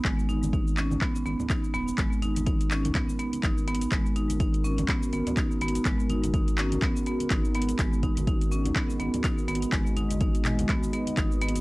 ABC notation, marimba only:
X:1
M:4/4
L:1/16
Q:"Swing 16ths" 1/4=124
K:G#m
V:1 name="Marimba"
G, z D2 D2 C2 B, z B,2 D2 B,2 | G, z D2 D2 C2 B, z B,2 D2 B,2 | G, z D2 D2 C2 B, z B,2 D2 B,2 | G, z D2 D2 C2 B, z B,2 D2 B,2 |
G, z D2 D2 C2 B, z B,2 D2 B,2 | G, z D2 D2 G,2 B, z B,2 D2 B,2 |]